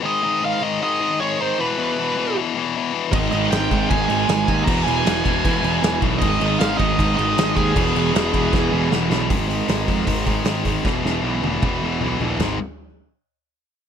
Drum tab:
CC |--------|--------|xxxxxxxx|xxxxxxxx|
HH |--------|--------|--------|--------|
SD |--------|--------|--o---o-|--o---o-|
T1 |--------|--------|--------|--------|
T2 |--------|--------|--------|--------|
FT |--------|--------|--------|--------|
BD |--------|--------|o--oo--o|o--oo--o|

CC |xxxxxxxx|xxxx----|--------|--------|
HH |--------|--------|oooooooo|--------|
SD |--o---o-|--o-o-oo|--o---o-|oo------|
T1 |--------|--------|--------|---o----|
T2 |--------|--------|--------|----o---|
FT |--------|--------|--------|------oo|
BD |o--oo--o|o--oo---|o--ooo-o|o---o---|

CC |x-------|
HH |--------|
SD |o-------|
T1 |--------|
T2 |--------|
FT |o-------|
BD |--------|